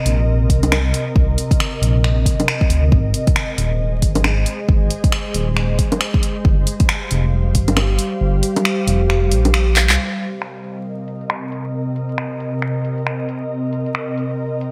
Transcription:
Already playing: ambient pad C3 C4 A#4 D#5
0.06 detuned saw bass A#1, closed hi-hat
0.50 detuned saw bass C2, kick, closed hi-hat
0.63 closed hi-hat, low bongo
0.72 finger snap, low bongo
0.94 closed hi-hat
1.16 detuned saw bass C2, kick
1.38 closed hi-hat
1.51 kick, closed hi-hat
1.60 finger snap
1.82 detuned saw bass A#1, closed hi-hat
2.04 finger snap
2.26 kick, closed hi-hat
2.40 closed hi-hat, low bongo
2.48 finger snap
2.61 kick
2.70 detuned saw bass D2, closed hi-hat
2.92 detuned saw bass G#1, ambient pad G#3 G#4 C5, kick
3.14 closed hi-hat
3.27 kick, closed hi-hat
3.36 finger snap
3.58 detuned saw bass D#1, closed hi-hat
4.02 detuned saw bass G#1, kick, closed hi-hat
4.15 closed hi-hat, low bongo
4.24 finger snap, low bongo
4.46 closed hi-hat
4.69 detuned saw bass G#1, kick
4.90 closed hi-hat
5.04 kick, closed hi-hat
5.12 finger snap
5.34 detuned saw bass D#1, closed hi-hat
5.57 finger snap
5.79 kick, closed hi-hat
5.92 closed hi-hat, low bongo
6.01 finger snap
6.14 kick
6.23 closed hi-hat
6.45 detuned saw bass G1, ambient pad G3 G4 F5, kick
6.67 closed hi-hat
6.80 kick, closed hi-hat
6.89 finger snap
7.11 detuned saw bass F1, closed hi-hat
7.55 detuned saw bass G1, kick, closed hi-hat
7.68 closed hi-hat, low bongo
7.77 finger snap, low bongo
7.99 closed hi-hat
8.21 detuned saw bass G1
8.43 closed hi-hat
8.56 closed hi-hat, low bongo
8.65 finger snap
8.87 detuned saw bass F1, closed hi-hat
9.10 finger snap
9.31 detuned saw bass A#1, closed hi-hat
9.45 closed hi-hat, low bongo
9.54 finger snap
9.76 clap, closed hi-hat
9.89 detuned saw bass C2, clap
9.98 ambient pad C3 C4 A#4 D#5
10.20 closed hi-hat
10.33 closed hi-hat
10.42 finger snap
10.64 closed hi-hat
11.08 closed hi-hat
11.21 closed hi-hat
11.30 finger snap
11.52 closed hi-hat
11.96 closed hi-hat
12.09 closed hi-hat
12.18 finger snap
12.40 closed hi-hat
12.62 finger snap
12.85 closed hi-hat
12.98 closed hi-hat
13.07 finger snap
13.29 closed hi-hat
13.73 closed hi-hat
13.86 closed hi-hat
13.95 finger snap
14.18 closed hi-hat
14.61 closed hi-hat

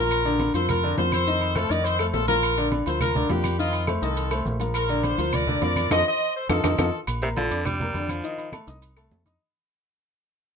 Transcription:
Already playing: fingered electric bass A#1, grand piano F3 F4 A#4, horn section F4 A#4
0.11 high conga, low agogo, claves, maracas
0.25 grand piano D3 D4 D5, high conga, low agogo, maracas
0.40 high conga, low agogo, maracas
0.54 fingered electric bass F2, grand piano F3 F4 A#4, horn section A4 C5, high conga, low agogo, maracas
0.69 horn section F4 A#4, high conga, low conga, low agogo, claves, maracas
0.83 grand piano D3 D4 D5, maracas
0.97 fingered electric bass F2, grand piano F3 F4 A#4, horn section F4 C5, high conga, low timbale, low agogo, maracas
1.12 horn section A4 C5, high conga, low agogo, claves, maracas
1.27 grand piano D#3 D#4 D#5, high conga, maracas
1.41 high conga, low agogo, maracas
1.56 grand piano A3 A4 C5, horn section F4 A4, high conga, low agogo, claves, maracas
1.70 fingered electric bass F2, grand piano D#3 D#4 D#5, horn section A#4 D5, maracas
1.85 horn section A4 C5, high conga, low agogo, maracas
1.99 grand piano A3 A4 C5, horn section F4 A4, high conga, low agogo, claves, maracas
2.14 fingered electric bass A#1, horn section F4 A4, high conga, low timbale, maracas
2.28 grand piano F3 F4 A#4, horn section F4 A#4, high conga, low agogo, maracas
2.42 high conga, low agogo, claves, maracas
2.57 grand piano D3 D4 D5, high conga, low agogo, maracas
2.72 high conga, low agogo, maracas
2.86 fingered electric bass D2, grand piano F3 F4 A#4, horn section A4 C5, high conga, low agogo, maracas
3.00 horn section F4 A#4, high conga, low conga, low agogo, claves, maracas
3.15 grand piano D3 D4 D5, high conga, low conga, maracas
3.30 fingered electric bass F2, grand piano F3 F4 A#4, horn section D4 G4, high conga, low timbale, low agogo, maracas
3.44 high conga, low agogo, claves, maracas
3.59 grand piano D#3 D#4 D#5, horn section C4 F4, high conga, maracas
3.73 high conga, low agogo, maracas
3.87 grand piano A3 A4 C5, high conga, low agogo, claves, maracas
4.02 fingered electric bass C2, grand piano D#3 D#4 D#5, horn section F4 A4, maracas
4.17 high conga, low agogo, maracas
4.31 grand piano A3 A4 C5, high conga, low agogo, claves, maracas
4.45 fingered electric bass A#1, high conga, maracas
4.60 grand piano F3 F4 A#4, low agogo, maracas
4.74 horn section F4 A#4, high conga, low agogo, claves, maracas
4.89 grand piano D3 D4 D5, high conga, low agogo, maracas
5.03 horn section F4 C5, high conga, low agogo, maracas
5.18 fingered electric bass D2, grand piano F3 F4 A#4, high conga, low agogo, maracas
5.33 horn section A#4 D5, high conga, low conga, low agogo, claves, maracas
5.47 grand piano D3 D4 D5, high conga, low conga, maracas
5.61 fingered electric bass F2, grand piano F3 F4 A#4, horn section A#4 D5, high conga, low timbale, low agogo, maracas
5.76 high conga, low agogo, claves, maracas
5.91 fingered electric bass F2, grand piano D#4 F4 A4, horn section C5 D#5, high conga, high timbale, claves, maracas
6.07 horn section C5 D#5
6.36 horn section A4 C5
6.49 fingered electric bass F2, grand piano D#4 F4 A4, horn section F4 A4, high conga, high timbale, claves, maracas
6.64 fingered electric bass F2, grand piano D#4 F4 A4, high conga, high timbale, claves, maracas
6.78 fingered electric bass F2, grand piano D#4 F4 A4, horn section F4 A4, high conga, high timbale, claves, maracas
7.07 fingered electric bass A#1, high conga, low agogo, claves, maracas
7.22 tenor saxophone C3, grand piano A#3 A#4 A#5, high conga, low agogo, maracas
7.36 tenor saxophone D3, grand piano F3 F4 F5, high conga, low agogo, maracas
7.51 fingered electric bass F2, grand piano D4 D5 D6, high conga, low agogo, maracas
7.66 tenor saxophone G3, high conga, low conga, low agogo, claves, maracas
7.80 grand piano A#3 A#4 A#5, high conga, low conga, maracas
7.94 fingered electric bass F2, grand piano D3 D4 D5, high conga, low agogo, maracas
8.09 tenor saxophone F3, high conga, low agogo, claves, maracas
8.24 grand piano D#3 D#4 D#5, high conga, maracas
8.38 high conga, low agogo, maracas
8.52 grand piano A3 A4 A5, high conga, low agogo, claves, maracas
8.67 fingered electric bass C2, grand piano D#4 D#5 D#6, maracas
8.82 high conga, low agogo, maracas
8.96 grand piano A3 A4 A5, high conga, low agogo, claves, maracas
9.11 fingered electric bass F2, high conga, low timbale, maracas
9.25 grand piano D#4 D#5 D#6, high conga, low agogo, maracas

